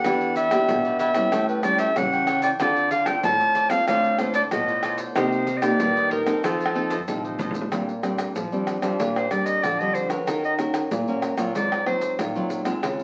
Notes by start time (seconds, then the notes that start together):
Already playing: F#5
0.04 E3 B3 D4 E4 G4 B4 D5, pandeiro, tamborim, maracas, surdo
0.21 pandeiro, maracas
0.35 E4 G4 B4 D5 E5, pandeiro, maracas
0.50 B3 D4 G4 B4 D5, pandeiro, tamborim, maracas
0.68 B2, pandeiro, maracas, surdo
0.84 G4 B4 D5, pandeiro, maracas
0.99 E4 G4 B4 D5 E5, pandeiro, maracas
1.14 G3 C#4 E4 G4 B4 D5, pandeiro, tamborim, maracas
1.32 A2 G4 A4 C#5 G5, pandeiro, tamborim, maracas, surdo
1.49 B4, pandeiro, maracas
1.63 G3 C#4 E4 G4 A4 C#5 D5 G5, pandeiro, tamborim, maracas
1.78 G4 A4 C#5 E5 G5, pandeiro, maracas
1.96 C#3 E3 G3 C#4 E4 F#5, pandeiro, tamborim, maracas, surdo
2.12 A4 C#5 G5, pandeiro, maracas
2.27 G4 A4 C#5 G5, pandeiro, tamborim, maracas
2.42 A4 C#5 D5 G5, pandeiro, maracas
2.60 D3 C4 F4 A4 C5 D5, pandeiro, tamborim, maracas, surdo
2.76 pandeiro, maracas
2.91 F4 A4 C5 D5 F5, pandeiro, maracas
3.05 C4 F4 A4 C5 D5 G5 A5, pandeiro, tamborim, maracas
3.23 A2 C4 F4 A4 A5, pandeiro, maracas, surdo
3.40 A4 C5 D5, pandeiro, maracas
3.55 F4 A4 C5 D5, pandeiro, maracas
3.70 C4 F4 A4 C5 D5 F5, pandeiro, tamborim, maracas
3.87 A2 D3 F4 A4 C5 D5 F5, pandeiro, tamborim, maracas, surdo
4.04 pandeiro, maracas
4.19 C4 F4 A4 C5 D5, pandeiro, tamborim, maracas
4.34 F4 A4 C5 D5, pandeiro, maracas
4.51 A2 B2 F4 A4 D#5, pandeiro, tamborim, maracas, surdo
4.68 A4 C5 D5, pandeiro, maracas
4.83 F4 A4 C5 D5, pandeiro, tamborim, maracas
4.98 A4 C5 D5, pandeiro, maracas
5.15 C3 A#3 D#4 G4 A#4 C5 D#5, pandeiro, tamborim, maracas, surdo
5.32 pandeiro, maracas
5.46 D#4 A#4 C5 D#5, pandeiro, maracas
5.57 D#5
5.62 A#3 D#4 G4 A#4 C5 D5, pandeiro, tamborim, maracas
5.80 G2 D#3, pandeiro, maracas, surdo
5.96 A#4 C5 D#5, pandeiro, maracas
6.11 D#4 A#4 C5 D#5, pandeiro, surdo
6.26 C4 D#4 A4 A#4 C5 D#5, pandeiro, tamborim, maracas
6.43 F3 F4 A4 C5 D#5, pandeiro, tamborim, maracas, surdo
6.60 pandeiro, maracas
6.66 tamborim
6.74 C4 D#4 F4 A4 C5 D#5, pandeiro
6.90 F4 A4 C5 D#5, pandeiro, maracas
6.97 surdo
7.08 C3 F3 C4 D#4 A4, pandeiro, maracas, surdo
7.18 surdo
7.24 A4 C5 D#5, pandeiro, maracas
7.29 surdo
7.38 F4 A4 C5 D#5, pandeiro, maracas, surdo
7.51 C5 D#5, pandeiro, maracas, surdo
7.55 A4
7.61 surdo
7.72 A#2 G3 C4 D4, pandeiro, tamborim, maracas, surdo
7.89 pandeiro, maracas
8.03 G3 C4 D4, pandeiro, tamborim, maracas
8.18 pandeiro, tamborim, maracas, surdo
8.35 F3, pandeiro, maracas, surdo
8.52 G3 C4 D4, pandeiro, maracas, surdo
8.67 pandeiro, tamborim, maracas, surdo
8.82 F3 G3 C4 D4, pandeiro, tamborim, maracas, surdo
8.99 A#2, pandeiro, maracas, surdo
9.16 C5, pandeiro, tamborim, maracas
9.31 G3 C4 D4 D5, pandeiro, tamborim, maracas
9.46 D#5, pandeiro, maracas, surdo
9.63 D3 F3 D5, pandeiro, tamborim, maracas, surdo
9.79 G3 C4 D4 D#5, pandeiro, maracas
9.94 C5, pandeiro, maracas
10.10 C#4 F#4 A#4 B4, pandeiro, tamborim, maracas
10.27 D#3 A#4, pandeiro, tamborim, maracas, surdo
10.44 D#5, pandeiro, maracas
10.59 C#4 F#4 A#4, pandeiro, tamborim, maracas
10.74 pandeiro, tamborim, maracas, surdo
10.91 A#2, pandeiro, maracas, surdo
11.08 C#4 F#4 A#4, pandeiro, maracas, surdo
11.22 pandeiro, tamborim, maracas, surdo
11.37 A#2 F#3 C4 F4, pandeiro, tamborim, maracas, surdo
11.55 G#2 D5, pandeiro, maracas, surdo
11.72 pandeiro, tamborim, maracas
11.86 F#3 C4 F4 C5, pandeiro, tamborim
12.01 pandeiro, maracas, surdo
12.19 A#2 D#3, pandeiro, tamborim, maracas, surdo
12.35 F#3 C4 F4, pandeiro, maracas
12.50 pandeiro, maracas
12.65 G#3 C4 F4, pandeiro, tamborim, maracas
12.83 C#3, pandeiro, tamborim, maracas, surdo
12.99 pandeiro, maracas